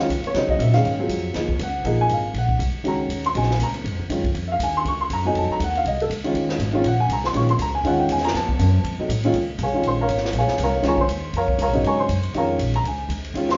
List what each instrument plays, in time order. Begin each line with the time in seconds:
Already playing: upright piano F5
0.09 upright bass C#2, kick, hi-hat pedal, ride
0.23 upright piano C#5, muted upright bass stroke, ride
0.34 upright bass C#3, upright piano C#3 F#3 C4 D#4 C5, kick, snare, ride
0.49 upright piano D#5, kick
0.59 upright bass A#2, upright piano E5, kick, hi-hat pedal, ride
0.74 upright piano D#3 G#3 C#4 G#4 F5, snare, ride
0.84 upright bass G#2, kick, ride
0.99 upright piano F#3 C4 F4 G#4
1.09 upright bass F2, kick, hi-hat pedal, ride
1.34 upright bass D#2, upright piano F3 A#3 D#4 G#4, kick, snare, ride
1.49 kick
1.59 upright bass C#2, upright piano F#5, kick, hi-hat pedal, ride
1.84 upright bass A#1, upright piano F3 A#3 D#4 G#4, kick, ride
2.01 upright piano G#5
2.09 upright bass G#1, kick, hi-hat pedal, ride
2.13 upright piano F5
2.34 upright bass A#1, kick, ride
2.38 upright piano F#5
2.49 kick
2.59 upright bass C2, kick, hi-hat pedal, ride
2.73 muted upright bass stroke
2.84 upright bass C#2, upright piano D#3 G#3 C#4 F#4, kick, ride
2.88 upright piano A#5
3.09 upright bass D#2, kick, hi-hat pedal, ride
3.24 upright piano C6, ride
3.34 upright bass A#1, upright piano C#3 F#3 C4 D#4 G#5, kick, ride
3.43 snare
3.51 snare
3.59 upright bass C#2, kick, hi-hat pedal, ride
3.63 upright piano A#5
3.74 ride
3.84 upright bass G#2, kick, ride
3.91 upright bass F2
4.00 upright bass C#2
4.10 upright bass F#2, upright piano D#3 G#3 C#4 F4, kick, hi-hat pedal, ride
4.24 kick, ride
4.34 upright bass F2, kick, ride
4.52 upright piano F5
4.59 upright bass D#2, upright piano G#5, kick, hi-hat pedal, ride
4.77 upright piano C6
4.85 upright bass C#2, upright piano C#6, kick, ride
5.01 upright piano C6
5.10 upright bass F#2, upright piano A#5, kick, hi-hat pedal, ride
5.25 upright piano F#3 A3 C4 D#4 G#5
5.34 upright bass F2, upright piano A5, kick, ride
5.50 upright piano A#5, muted upright bass stroke
5.60 upright bass D#2, kick, hi-hat pedal, ride
5.64 upright piano F#5
5.75 upright piano F5, ride
5.84 upright bass C2, upright piano D#5, kick, ride
6.00 upright piano A4, ride
6.10 upright bass C#2, kick, hi-hat pedal, ride
6.24 upright piano D#3 G#3 C#4 F4, ride
6.34 upright bass D#2, kick, ride
6.49 snare
6.59 upright bass G#1, kick, hi-hat pedal, ride
6.73 upright piano D#3 G#3 C#4 F4
6.84 upright bass A#1, upright piano F#5, kick, ride
7.00 upright piano G#5
7.09 upright bass C2, upright piano A#5, kick, hi-hat pedal, ride
7.24 upright piano C6, snare
7.33 upright bass A#1, upright piano D#3 G#3 C#4 F4 C#6, kick, ride
7.49 upright piano C6, ride
7.59 upright bass C#2, upright piano A#5, kick, hi-hat pedal, ride
7.75 upright piano G#5
7.84 upright bass D#2, upright piano D#3 G#3 C#4 F4 F#5, kick, ride
8.00 upright piano G5
8.09 upright bass E2, upright piano G#5, kick, hi-hat pedal, ride
8.18 snare
8.24 upright piano A#5, snare, ride
8.34 upright bass F2, upright piano A5, kick, snare, ride
8.48 muted upright bass stroke, kick
8.59 upright bass F#2, kick, hi-hat pedal, ride
8.84 upright bass F2, kick, ride
8.98 upright piano F#3 A3 C4 D#4, muted upright bass stroke
9.09 upright bass A2, kick, hi-hat pedal, ride
9.23 upright piano A#2 D#3 G#3 C#4 F4, ride
9.34 upright bass C#2, kick, ride
9.59 upright bass C2, kick, hi-hat pedal, ride
9.63 upright piano G#4 C#5 F5 G#5
9.73 upright piano D#3 G#3 C#4 F4, muted upright bass stroke
9.83 upright bass A#1, kick, ride
9.87 upright piano C5 C6
10.01 upright piano A#4 C#5 F5 A#5
10.08 upright bass G#1, kick, hi-hat pedal, ride
10.17 snare
10.25 snare
10.33 upright bass A#1, kick, ride
10.38 upright piano G#4 C#5 F5 G#5
10.48 muted upright bass stroke, snare
10.58 upright bass C2, kick, hi-hat pedal, ride
10.63 upright piano A#4 C#5 F5 A#5
10.82 upright bass C#2, upright piano D#3 G#3 C#4 F4, kick, snare, ride
10.87 upright piano C#5 G#5 A#5 C#6
10.98 upright piano C5 C6, kick
11.08 upright bass D#2, hi-hat pedal, ride
11.33 upright bass F2, upright piano A#5, kick, ride
11.38 upright piano A#4 C#5 F5
11.48 kick
11.58 upright bass C#2, upright piano A#5, kick, hi-hat pedal, ride
11.63 upright piano A#4 C#5 F5
11.67 upright bass A#1
11.73 upright bass G#1, upright piano C#3 F#3 C4 D#4, ride
11.83 upright bass G#2, upright piano C#5 G#5 A#5 C#6, kick, ride
12.00 upright piano C5 C6
12.09 upright bass F#2, kick, hi-hat pedal, ride
12.23 ride
12.34 upright bass F2, upright piano D#3 G#3 C#4 F4 A#4 C#5 F5 A#5, kick, ride
12.58 upright bass A#1, kick, hi-hat pedal, ride
12.74 upright piano A#5, ride
12.84 upright bass C#2, upright piano G#5, kick, ride
13.09 upright bass D2, kick, hi-hat pedal, ride
13.24 ride
13.34 upright bass D#2, upright piano D#3 G#3 C#4 F4, kick, ride
13.49 upright piano C6, snare